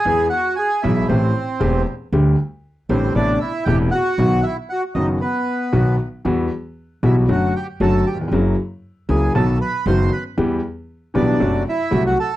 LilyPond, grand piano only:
\new Staff \with { instrumentName = "Grand piano" } { \clef bass \time 4/4 \key e \minor \tempo 4 = 116 <e, e gis b gis'>8 r4 <b,, b, e gis b gis'>8 <a,, a, e a c' g'>8 r8 <e,, e, e a c' g'>8 r8 | <d, d g a g'>8 r4 <a,, a, d g a g'>8 <a,, a, c a b e'>8 r8 <e,, e, c a b e'>8 r8 | <b,, b, dis fis b fis'>8 r4 <fis,, fis, dis fis b fis'>8 r4 <b,, b, dis fis b fis'>8 r8 | <e, e g b fis'>8 r4 <b,, b, e g b fis'>8 <fis, d fis a fis'>8 r8 <fis, d fis a fis'>8 r32 dis,32 e,32 f,32 |
<fis, cis fis ais e'>8 r4 <cis, cis fis ais e'>8 <b,, b, dis fis b fis'>8 r8 <fis,, fis, dis fis b fis'>8 r8 | <e, e g b g'>8 r4 <b,, b, e g b g'>8 <fis, c fis a fis'>8 r8 <c, c fis a fis'>8 r8 | }